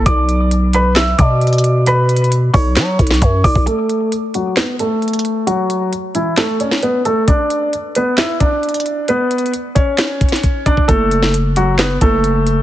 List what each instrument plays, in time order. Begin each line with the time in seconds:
0.06 808-style bass B1, felt piano D5 D6, kick, closed hi-hat
0.29 closed hi-hat
0.51 closed hi-hat
0.73 felt piano B4 B5, closed hi-hat
0.96 felt piano E5 E6, snare, clap, closed hi-hat
1.18 808-style bass B2, felt piano D5 D6, kick, closed hi-hat
1.41 closed hi-hat
1.47 closed hi-hat
1.53 closed hi-hat
1.58 closed hi-hat
1.64 closed hi-hat
1.86 felt piano B4 B5, closed hi-hat
2.09 closed hi-hat
2.17 closed hi-hat
2.24 closed hi-hat
2.32 closed hi-hat
2.54 808-style bass B1, felt piano C#5 C#6, kick, open hi-hat
2.76 808-style bass F#3, snare, clap, closed hi-hat
2.99 808-style bass B1, kick, closed hi-hat
3.07 snare, closed hi-hat
3.14 closed hi-hat
3.22 808-style bass F#2, kick, closed hi-hat
3.44 808-style bass B1, felt piano D5 D6, kick, open hi-hat
3.55 808-style bass B1, kick
3.66 felt piano A3 A4, closed hi-hat
3.89 closed hi-hat
4.12 closed hi-hat
4.34 felt piano F#3 F#4, closed hi-hat
4.57 felt piano B3 B4, snare, clap, closed hi-hat
4.79 felt piano A3 A4, closed hi-hat
5.02 closed hi-hat
5.08 closed hi-hat
5.13 closed hi-hat
5.19 closed hi-hat
5.25 closed hi-hat
5.47 felt piano F#3 F#4, closed hi-hat
5.70 closed hi-hat
5.93 closed hi-hat
6.15 felt piano E3 E4, closed hi-hat
6.37 felt piano A3 A4, snare, clap, closed hi-hat
6.60 felt piano C#4 C#5, closed hi-hat
6.71 snare
6.83 felt piano B3 B4, closed hi-hat
7.05 felt piano A3 A4, closed hi-hat
7.28 felt piano D4 D5, kick, closed hi-hat
7.50 closed hi-hat
7.73 closed hi-hat
7.95 felt piano B3 B4, closed hi-hat
8.17 felt piano E4 E5, snare, clap, closed hi-hat
8.40 felt piano D4 D5, kick, closed hi-hat
8.63 closed hi-hat
8.69 closed hi-hat
8.74 closed hi-hat
8.80 closed hi-hat
8.86 closed hi-hat
9.08 felt piano B3 B4, closed hi-hat
9.31 closed hi-hat
9.38 closed hi-hat
9.46 closed hi-hat
9.54 closed hi-hat
9.75 felt piano C#4 C#5, kick, closed hi-hat
9.98 snare, clap, closed hi-hat
10.21 kick, closed hi-hat
10.29 snare, closed hi-hat
10.36 closed hi-hat
10.43 kick, closed hi-hat
10.66 felt piano D4 D5, kick, closed hi-hat
10.77 kick
10.88 808-style bass F#1, felt piano A3 A4, kick, closed hi-hat
11.11 closed hi-hat
11.22 snare
11.34 closed hi-hat
11.56 felt piano F#3 F#4, closed hi-hat
11.78 felt piano B3 B4, snare, clap, closed hi-hat
12.01 808-style bass F#1, felt piano A3 A4, kick, closed hi-hat
12.24 closed hi-hat
12.47 closed hi-hat